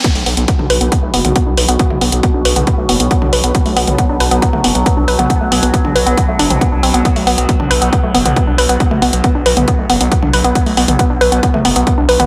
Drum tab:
HH |xooxx-oxx-oxx-ox|x-oxx-oxx-oxx-ox|xooxx-oxx-oxx-ox|x-oxx-oxx-oxx-ox|
T2 |-----o-----o----|-o-----o-----o--|---o-----o-----o|-----o-----o----|
BD |o---o---o---o---|o---o---o---o---|o---o---o---o---|o---o---o---o---|

HH |xooxx-oxx-oxx-ox|x-oxx-oxx-oxx-ox|xooxx-oxx-oxx-ox|
T2 |-----o-----o----|-o-----o-----o--|---o-----o-----o|
BD |o---o---o---o---|o---o---o---o---|o---o---o---o---|